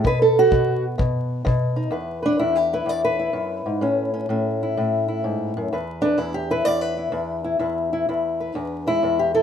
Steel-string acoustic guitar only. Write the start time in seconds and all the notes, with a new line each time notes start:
0.04 B2 B4
0.22 A4
0.39 F#4
0.51 B2 B3
0.98 B2
1.45 B2
1.76 D#4
1.91 E2 B4
2.22 D4 B4
2.39 E2 E4
2.56 G4
2.73 E4 B4
2.86 E2 D5
3.04 B4
3.19 E4
3.33 F#2
3.66 G#2
3.81 A2 C#4
4.14 C#4
4.29 A2 C#4
4.63 E4
4.77 A2
5.08 E4
5.24 G#2
5.57 F#2
5.72 E2 B4
6.02 D4 B4
6.18 E2 E4
6.34 G4
6.50 E4 B4
6.65 E2 D5
6.81 B4
6.97 E4
7.12 E2
7.44 E4
7.59 E2 E4
7.93 E4
8.09 E2 E4
8.40 B4
8.55 E2 D4
8.87 G#3 E4
9.03 E2
9.19 G4
9.34 E4 A4